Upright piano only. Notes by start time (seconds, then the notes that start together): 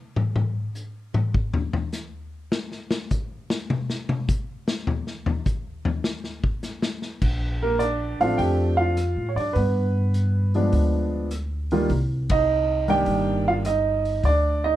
7.63 A#3 A#4
7.79 D4 D5
8.20 F3 A3 C4 D4 F5
8.24 F4
8.38 G4 G5
8.77 F4 F5
9.29 C#5
9.36 D4 D5
9.53 B4
9.57 B3
10.55 F3 G#3 B3 D4
11.72 D#3 G3 A#3 F4
12.32 D#4 D#5
12.88 D#3 G3 A#3 D4 G4 G5
13.48 F4 F5
13.66 D#4 D#5
14.25 D4 D5
14.64 D#4 D#5